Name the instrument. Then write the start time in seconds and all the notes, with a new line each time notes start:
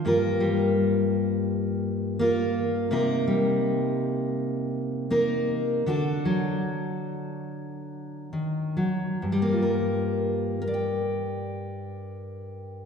steel-string acoustic guitar
0.05 G2 A#3 F4 A#4
0.40 G3
2.19 A#3 F4 A#4
2.91 C3 A#3 D#4 A#4
3.27 G3
5.10 A#3 D#4 A#4
5.86 D3 D4 F#4 A4
6.25 F#3
8.33 D#3
8.77 F#3
9.22 G2
9.32 G3
9.42 A#3
9.52 F4
9.62 A#4
10.62 A#4
10.67 D5
10.74 G5